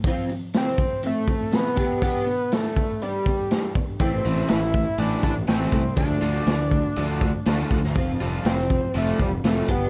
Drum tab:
HH |o-o-o-o-o-o-o-o-|o-o-o-o-o-o-o-o-|o-o-o-o-o-o-o-o-|o-o-o-o-o-o-o-o-|
SD |----o-------o---|----o-------o---|----o-------o---|----o-------o--o|
BD |o-----o---o---o-|o-----o---o---o-|o-----o---o---o-|o-----o---o---o-|

HH |o-o-o-o-o-o-o-o-|
SD |----o-------o---|
BD |o-----o---o---o-|